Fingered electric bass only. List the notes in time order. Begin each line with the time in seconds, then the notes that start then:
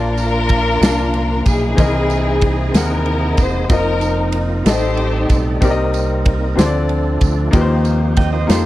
Already playing: A#1
0.81 C2
1.46 B1
1.78 C2
2.74 D#2
3.38 E1
3.70 F1
4.66 A1
5.30 B1
5.62 C2
6.57 D2
7.21 D2
7.53 D#2
8.49 F2